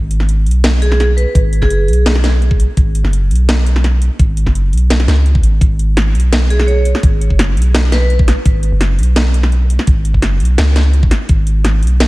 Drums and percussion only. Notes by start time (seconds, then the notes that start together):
0.11 closed hi-hat
0.20 snare
0.29 closed hi-hat
0.46 closed hi-hat
0.51 closed hi-hat
0.64 snare, closed hi-hat
0.82 closed hi-hat
0.92 snare
1.00 snare, closed hi-hat
1.18 closed hi-hat
1.35 kick, closed hi-hat
1.53 closed hi-hat
1.62 kick, snare
1.70 closed hi-hat
1.88 closed hi-hat
1.93 closed hi-hat
2.06 snare, closed hi-hat
2.15 snare
2.24 snare, closed hi-hat
2.42 closed hi-hat
2.51 kick
2.60 closed hi-hat
2.77 kick, closed hi-hat
2.95 closed hi-hat
3.05 snare
3.13 closed hi-hat
3.31 closed hi-hat
3.35 closed hi-hat
3.49 snare, closed hi-hat
3.67 closed hi-hat
3.76 snare
3.84 snare, closed hi-hat
4.02 closed hi-hat
4.19 kick, closed hi-hat
4.37 closed hi-hat
4.46 kick, snare
4.55 closed hi-hat
4.73 closed hi-hat
4.78 closed hi-hat
4.90 snare, closed hi-hat
5.00 snare
5.08 snare, closed hi-hat
5.26 closed hi-hat
5.35 kick
5.43 closed hi-hat
5.61 kick, closed hi-hat
5.79 closed hi-hat
5.97 snare, closed hi-hat
6.15 closed hi-hat
6.20 closed hi-hat
6.33 snare, closed hi-hat
6.50 closed hi-hat
6.59 snare
6.68 closed hi-hat
6.85 closed hi-hat
6.95 snare
7.03 kick, closed hi-hat
7.21 closed hi-hat
7.30 kick
7.39 snare, closed hi-hat
7.57 closed hi-hat
7.62 closed hi-hat
7.75 snare, closed hi-hat
7.92 snare, closed hi-hat
8.10 closed hi-hat
8.19 kick
8.28 snare, closed hi-hat
8.45 kick, closed hi-hat
8.63 closed hi-hat
8.81 snare, closed hi-hat
8.99 closed hi-hat
9.03 closed hi-hat
9.16 snare, closed hi-hat
9.34 closed hi-hat
9.43 snare
9.52 closed hi-hat
9.70 closed hi-hat
9.79 snare
9.87 kick, closed hi-hat
10.05 closed hi-hat
10.14 kick
10.22 snare, closed hi-hat
10.40 closed hi-hat
10.45 closed hi-hat
10.58 snare, closed hi-hat
10.76 snare, closed hi-hat
10.93 closed hi-hat
11.03 kick
11.11 snare, closed hi-hat
11.29 kick, closed hi-hat
11.47 closed hi-hat
11.65 snare, closed hi-hat
11.83 closed hi-hat
11.87 closed hi-hat
12.00 snare, closed hi-hat